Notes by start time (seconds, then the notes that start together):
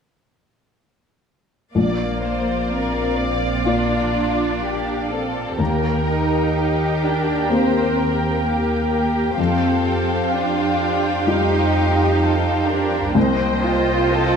1.74 A#1 A#3 D5 F5
2.23 C5
2.71 C4 A#4
3.17 D5
3.65 A#3 D4 F4 D5
4.61 G4
5.09 C4 A4
5.58 D#2 A#3 G4 A#4 G5
6.09 D#4
6.56 G4
7.04 D4
7.50 A#3 C4 G4 A#4 C5
7.98 A#4
8.44 A#3 G4
8.92 G4
9.38 F2 C4 G4 A4 C5 F5 G5
10.32 D4 F4
11.26 G3 D#4 F4 G4
12.20 A4
12.66 D4 A#4
13.14 C2 A#3 C4 C5 D#5 G5
13.63 F4
14.11 A4